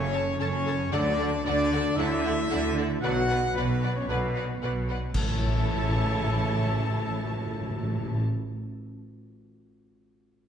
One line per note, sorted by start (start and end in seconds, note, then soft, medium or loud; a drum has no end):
0.00 0.33 F#1 loud
0.00 0.34 F#2 loud
0.00 0.94 F#2 loud
0.00 0.25 C#3 medium
0.00 0.12 C#4 medium
0.00 0.38 C#4 loud
0.00 1.31 A4 medium
0.00 0.38 C#5 loud
0.00 0.39 C#5 loud
0.00 0.94 C#5 medium
0.00 1.71 A5 medium
0.00 0.94 C#6 medium
0.12 0.39 C#4 medium
0.12 0.22 A4 medium
0.12 0.20 C#5 medium
0.12 0.21 A5 medium
0.26 0.51 C#3 medium
0.39 0.86 F#1 loud
0.39 0.86 F#2 loud
0.39 0.91 C#4 loud
0.39 0.65 C#4 medium
0.39 0.47 A4 medium
0.39 0.91 C#5 loud
0.39 0.47 C#5 medium
0.39 0.91 C#5 loud
0.39 0.95 C#5 loud
0.39 0.48 A5 medium
0.52 0.78 C#3 medium
0.66 0.94 C#4 medium
0.66 0.74 A4 medium
0.66 0.74 C#5 medium
0.66 0.74 A5 medium
0.79 0.94 C#3 medium
0.92 1.39 D2 loud
0.92 3.05 D3 loud
0.92 1.39 D3 loud
0.92 1.11 D3 loud
0.92 1.11 F#3 loud
0.92 1.43 D4 loud
0.92 1.01 A4 loud
0.92 1.44 D5 loud
0.92 1.00 D5 medium
0.92 1.45 D5 loud
0.92 1.00 F#5 loud
1.19 2.50 F#4 medium
1.19 1.27 A4 medium
1.19 1.27 D5 medium
1.19 1.27 F#5 medium
1.44 1.92 D2 loud
1.44 1.92 D3 loud
1.44 1.96 D4 loud
1.44 1.55 A4 loud
1.44 1.97 D5 loud
1.44 1.53 D5 medium
1.44 1.97 D5 loud
1.44 2.12 D5 medium
1.44 1.98 D5 loud
1.44 1.54 F#5 medium
1.59 1.97 F#5 medium
1.72 1.81 A4 medium
1.72 1.80 D5 medium
1.72 1.80 F#5 medium
1.96 2.44 D2 loud
1.96 2.15 D3 loud
1.96 2.44 D3 loud
1.96 2.15 F#3 loud
1.96 3.02 E4 loud
1.96 2.05 A4 loud
1.96 2.06 D5 medium
1.96 2.74 E5 loud
1.96 2.73 E5 loud
1.96 2.87 E5 loud
1.96 2.07 F#5 medium
1.96 3.69 F#5 medium
2.13 3.57 D5 medium
2.23 2.32 A4 medium
2.23 2.33 D5 medium
2.23 2.31 F#5 medium
2.38 2.64 A3 medium
2.50 2.97 D2 loud
2.50 2.97 D3 loud
2.50 2.77 F#4 medium
2.50 2.59 A4 medium
2.50 2.60 D5 medium
2.50 2.58 F#5 medium
2.65 2.90 A3 medium
2.77 3.30 F#4 medium
2.77 2.85 A4 medium
2.77 2.86 D5 medium
2.77 2.86 F#5 medium
2.91 3.06 A3 medium
3.02 3.50 B1 loud
3.02 3.50 B2 loud
3.02 5.18 B2 loud
3.02 3.21 D3 loud
3.02 3.21 F#3 loud
3.02 3.55 F#4 loud
3.02 3.11 B4 loud
3.02 3.11 D5 medium
3.02 3.51 F#5 loud
3.02 3.57 F#5 loud
3.02 3.11 F#5 medium
3.02 3.55 F#5 loud
3.18 4.47 F#3 medium
3.29 3.37 B4 medium
3.29 3.38 D5 medium
3.29 3.38 F#5 medium
3.44 4.34 B4 medium
3.54 4.03 B1 loud
3.54 4.03 B2 loud
3.54 3.93 B4 loud
3.54 3.96 B4 loud
3.54 3.95 B4 loud
3.54 3.65 B4 medium
3.54 3.65 D5 medium
3.54 3.65 F#5 medium
3.58 3.96 B3 loud
3.58 4.22 D5 medium
3.70 4.08 F#5 medium
3.82 3.91 B4 medium
3.82 3.91 D5 medium
3.82 3.90 F#5 medium
3.82 5.18 B5 medium
3.94 4.09 C#4 loud
3.94 4.06 C#5 medium
3.94 4.09 C#5 loud
3.94 4.09 C#5 medium
3.94 5.18 D6 medium
4.06 4.56 B1 medium
4.06 4.56 B2 loud
4.06 4.27 D3 medium
4.06 4.27 F#3 medium
4.06 4.63 B3 loud
4.06 4.60 B4 medium
4.06 4.63 B4 medium
4.06 4.62 B4 medium
4.06 4.18 B4 medium
4.06 4.18 D5 medium
4.06 4.17 F#5 medium
4.06 5.18 F#5 medium
4.23 5.18 D5 medium
4.36 4.44 B4 medium
4.36 4.44 D5 medium
4.36 4.44 F#5 medium
4.49 4.74 F#3 medium
4.62 5.09 B1 medium
4.62 5.09 B2 medium
4.62 4.87 F#4 medium
4.62 4.70 B4 medium
4.62 4.72 D5 medium
4.62 4.70 F#5 medium
4.75 5.01 F#3 medium
4.88 5.17 F#4 medium
4.88 4.98 B4 medium
4.88 4.99 D5 medium
4.88 4.97 F#5 medium
5.02 5.18 F#3 medium
5.14 8.19 A1 medium
5.14 5.24 A2 medium
5.14 8.19 A2 medium
5.14 9.06 A2 medium
5.14 8.19 C#3 medium
5.14 8.18 E3 loud
5.14 8.18 A3 loud
5.14 8.19 E4 medium
5.14 8.19 A4 loud
5.14 8.19 A4 medium
5.14 8.19 C#5 medium
5.14 8.19 A5 loud
5.14 8.19 A5 medium
5.14 concert bass drum medium
5.14 crash medium
5.23 5.31 A2 medium
5.23 8.56 A3 medium
5.30 5.38 A2 loud
5.30 8.34 C#4 medium
5.37 5.46 A2 medium
5.37 8.41 E4 medium
5.44 5.53 A2 loud
5.44 8.48 C#5 medium
5.51 5.61 A2 medium
5.51 8.55 E5 medium
5.61 5.68 A2 medium
5.68 5.76 A2 medium
5.76 5.83 A2 loud
5.83 5.90 A2 medium
5.90 5.98 A2 loud
5.98 6.05 A2 medium
6.05 6.13 A2 loud
6.13 6.20 A2 medium
6.20 6.27 A2 loud
6.27 6.34 A2 loud
6.35 6.43 A2 medium
6.43 6.50 A2 medium
6.51 6.58 A2 medium
6.58 6.65 A2 medium
6.65 6.72 A2 loud
6.72 6.79 A2 medium
6.79 6.87 A2 loud
6.87 6.94 A2 medium
6.95 7.02 A2 medium
7.03 7.10 A2 medium
7.10 7.17 A2 medium
7.17 7.25 A2 medium
7.25 7.31 A2 loud
7.31 7.39 A2 medium
7.39 7.46 A2 medium
7.46 7.54 A2 medium
7.54 7.61 A2 medium
7.61 7.69 A2 medium
7.69 7.76 A2 loud
7.76 7.83 A2 medium
7.83 7.91 A2 loud
7.91 7.99 A2 loud
7.99 8.06 A2 loud
8.06 8.14 A2 medium
8.14 8.22 A2 medium